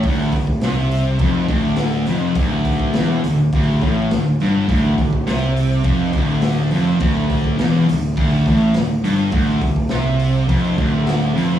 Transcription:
<<
  \new Staff \with { instrumentName = "Distorted electric guitar" } { \clef bass \time 4/4 \key d \minor \tempo 4 = 104 d,8 d,8 c4 f,8 d,4 f,8 | d,4 e,8 d,8 d,8 a,8 d,8 g,8 | d,8 d,8 c4 f,8 d,4 f,8 | d,4 e,8 d,8 d,8 a,8 d,8 g,8 |
d,8 d,8 c4 f,8 d,4 f,8 | }
  \new Staff \with { instrumentName = "Picked electric bass" } { \clef bass \time 4/4 \key d \minor d,,8 d,,8 c,4 f,,8 d,,4 f,,8 | d,,4 e,,8 d,,8 d,,8 a,,8 d,,8 g,,8 | d,,8 d,,8 c,4 f,,8 d,,4 f,,8 | d,,4 e,,8 d,,8 d,,8 a,,8 d,,8 g,,8 |
d,,8 d,,8 c,4 f,,8 d,,4 f,,8 | }
  \new DrumStaff \with { instrumentName = "Drums" } \drummode { \time 4/4 <hho bd>8 <hho bd>16 bd16 <hho sn>8 hho8 <hho bd>8 <hho bd>8 <hho sn>8 hho8 | <hho bd>8 <hho bd>16 bd16 <hho sn>8 hho8 <hho bd>8 <hho bd>8 <hho sn>8 hho8 | <hho bd>8 <hho bd>16 bd16 <hho sn>8 hho8 <hho bd>8 <hho bd>8 <hho sn>8 hho8 | <hho bd>8 <hho bd>16 bd16 <hho sn>8 hho8 <hho bd>8 <hho bd>8 <hho sn>8 hho8 |
<hho bd>8 <hho bd>16 bd16 <hho sn>8 hho8 <hho bd>8 <hho bd>8 <hho sn>8 hho8 | }
>>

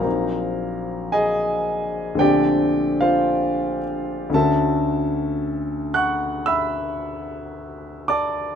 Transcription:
<<
  \new Staff \with { instrumentName = "Grand piano" } { \time 4/4 \key d \dorian \tempo 4 = 56 <bes' f'' bes''>4 <aes' ees'' aes''>4 <g' d'' g''>8. <f' c'' f''>8. r8 | <a' e'' a''>4. <fis'' cis''' fis'''>8 <e'' b'' e'''>4. <d'' a'' d'''>8 | }
  \new Staff \with { instrumentName = "Grand piano" } { \time 4/4 \key d \dorian <bes,, ges bes c' ees'>2 <bes,, d a c' d'>2 | <d, d a cis' fis'>1 | }
>>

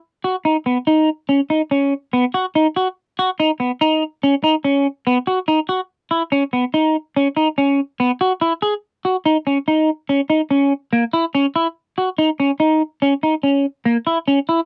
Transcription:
\new Staff \with { instrumentName = "Clean electric guitar" } { \time 7/4 \key b \major \tempo 4 = 143 r8 fis'8 dis'8 b8 dis'4 cis'8 dis'8 cis'4 b8 fis'8 dis'8 fis'8 | r8 fis'8 dis'8 b8 dis'4 cis'8 dis'8 cis'4 b8 fis'8 dis'8 fis'8 | r8 e'8 cis'8 b8 dis'4 cis'8 dis'8 cis'4 b8 fis'8 e'8 gis'8 | r8 fis'8 dis'8 cis'8 dis'4 cis'8 dis'8 cis'4 ais8 e'8 cis'8 e'8 |
r8 fis'8 dis'8 cis'8 dis'4 cis'8 dis'8 cis'4 ais8 e'8 cis'8 e'8 | }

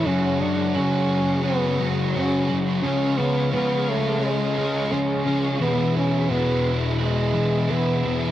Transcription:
<<
  \new Staff \with { instrumentName = "String machine" } { \time 4/4 \key cis \phrygian \tempo 4 = 86 << { <cis'' fis'' cis'''>1 | <cis'' eis'' cis'''>1 | <b' e'' b''>1 | } \\ { gis'1 | gis'1~ | gis'1 | } >> }
  \new Staff \with { instrumentName = "French horn" } { \time 4/4 \key cis \phrygian cis'8 d'8 cis'4 b8 r8 cis'8. r16 | cis'8 b8 b8 a8 gis4 cis'4 | b8 cis'8 b8 r8 gis4 b8. r16 | }
  \new Staff \with { instrumentName = "Clean electric guitar" } { \clef bass \time 4/4 \key cis \phrygian fis8 gis8 fis8 gis8 cis'8 gis8 fis8 fis8 | eis8 gis8 eis4 cis'8 gis8 eis8 eis8 | e8 b8 e8 d'8 gis'8 d'8 b8 e8 | }
  \new Staff \with { instrumentName = "Overdriven electric guitar" } { \clef bass \time 4/4 \key cis \phrygian <fis gis cis' fis'>4 <fis gis cis' fis'>4 <fis gis cis' fis'>8 <gis cis' fis'>8 <fis gis cis' fis'>4 | <cis eis gis cis' eis'>4 <eis gis cis' eis'>4 <cis eis gis cis' eis'>8 <gis cis' eis'>8 <eis gis cis' eis'>4 | <e, b, e gis d' e'>4 <e gis d' e'>4 <e, b, e gis d' e'>8 <e gis d' e'>8 <e gis d' e'>4 | }
  \new Staff \with { instrumentName = "Distorted electric guitar" } { \clef bass \time 4/4 \key cis \phrygian <fis, cis fis>8 <cis fis>8 <fis, cis fis>4. <cis fis>8 <fis, cis fis>8 <cis fis>8 | <cis gis cis'>8 <gis cis'>8 <cis gis cis'>4. <gis cis'>8 <cis gis cis'>8 <gis cis'>8 | <e, b, e>8 <b, e>8 <e, b, e>4. <b, e>8 <e, b, e>8 <b, e>8 | }
>>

